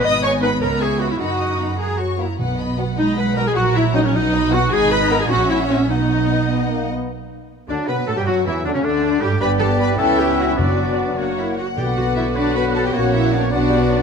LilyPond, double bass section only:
\new Staff \with { instrumentName = "Double bass section" } { \clef bass \time 6/8 \key b \major \tempo 4. = 103 gis,,4. cis,4. | fis,2~ fis,8 r8 | b,,2. | ais,,4. b,,4. |
gis,,4. ais,,4. | b,,2~ b,,8 r8 | \key b \minor r4. d,8 b,8 a,16 g,16 | fis,8 e,8 d,16 cis,16 d,4 g,8 |
g,,4. cis,4. | fis,,4. fis,,4 r8 | b,,2. | ais,,4. b,,4. | }